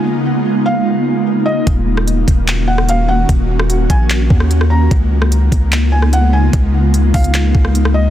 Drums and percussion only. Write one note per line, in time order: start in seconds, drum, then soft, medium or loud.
1.67 kick loud
1.67 closed hi-hat medium
1.97 cross-stick loud
2.08 closed hi-hat medium
2.28 kick loud
2.28 closed hi-hat medium
2.48 clap loud
2.48 closed hi-hat medium
2.78 cross-stick medium
2.89 closed hi-hat medium
3.29 kick loud
3.29 closed hi-hat medium
3.59 cross-stick loud
3.70 closed hi-hat medium
3.90 kick loud
3.90 closed hi-hat medium
4.10 clap loud
4.10 closed hi-hat medium
4.30 kick medium
4.40 cross-stick medium
4.51 closed hi-hat medium
4.61 cross-stick medium
4.91 kick loud
4.91 closed hi-hat medium
5.22 cross-stick loud
5.32 closed hi-hat medium
5.52 kick loud
5.52 closed hi-hat medium
5.72 clap loud
5.72 closed hi-hat medium
6.02 cross-stick medium
6.13 closed hi-hat medium
6.53 kick loud
6.53 closed hi-hat medium
6.94 closed hi-hat medium
7.14 kick loud
7.14 closed hi-hat medium
7.14 open hi-hat medium
7.24 closed hi-hat medium
7.34 clap loud
7.34 closed hi-hat medium
7.55 kick medium
7.65 cross-stick medium
7.75 closed hi-hat medium
7.85 cross-stick loud